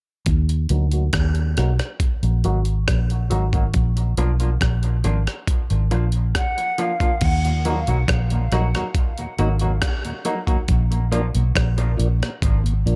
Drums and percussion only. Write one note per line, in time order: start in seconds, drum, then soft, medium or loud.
0.26 kick loud
0.26 closed hi-hat medium
0.49 closed hi-hat medium
0.69 closed hi-hat medium
0.92 closed hi-hat medium
1.13 kick loud
1.13 cross-stick loud
1.13 closed hi-hat medium
1.35 closed hi-hat soft
1.57 cross-stick medium
1.57 closed hi-hat medium
1.79 cross-stick medium
1.79 closed hi-hat soft
2.00 kick loud
2.00 closed hi-hat medium
2.23 closed hi-hat soft
2.44 closed hi-hat medium
2.65 closed hi-hat soft
2.88 kick loud
2.88 cross-stick loud
2.88 closed hi-hat medium
3.10 closed hi-hat soft
3.31 closed hi-hat medium
3.53 kick loud
3.53 closed hi-hat soft
3.74 kick loud
3.74 closed hi-hat medium
3.97 closed hi-hat medium
4.17 closed hi-hat medium
4.40 closed hi-hat medium
4.61 kick loud
4.61 cross-stick loud
4.61 closed hi-hat medium
4.83 closed hi-hat soft
5.04 closed hi-hat medium
5.27 cross-stick medium
5.27 closed hi-hat medium
5.47 kick loud
5.47 closed hi-hat medium
5.70 closed hi-hat soft
5.91 closed hi-hat medium
6.12 closed hi-hat soft
6.35 kick loud
6.35 cross-stick loud
6.35 closed hi-hat medium
6.58 closed hi-hat medium
6.78 closed hi-hat medium
7.00 kick loud
7.00 closed hi-hat soft
7.21 kick loud
7.21 closed hi-hat medium
7.21 crash medium
7.45 closed hi-hat medium
7.65 closed hi-hat medium
7.87 closed hi-hat medium
8.08 kick loud
8.08 cross-stick loud
8.08 closed hi-hat medium
8.30 closed hi-hat soft
8.52 cross-stick medium
8.52 closed hi-hat medium
8.75 cross-stick medium
8.75 closed hi-hat soft
8.95 kick loud
8.95 closed hi-hat medium
9.18 closed hi-hat soft
9.38 closed hi-hat medium
9.59 closed hi-hat soft
9.82 kick loud
9.82 cross-stick loud
9.82 closed hi-hat loud
10.05 closed hi-hat soft
10.25 closed hi-hat medium
10.47 kick medium
10.47 closed hi-hat soft
10.68 kick loud
10.68 closed hi-hat medium
10.92 closed hi-hat medium
11.12 closed hi-hat medium
11.35 closed hi-hat medium
11.55 kick loud
11.55 cross-stick loud
11.55 closed hi-hat medium
11.78 closed hi-hat soft
12.00 closed hi-hat medium
12.23 cross-stick medium
12.23 closed hi-hat medium
12.42 kick loud
12.42 closed hi-hat medium
12.66 closed hi-hat soft
12.87 closed hi-hat medium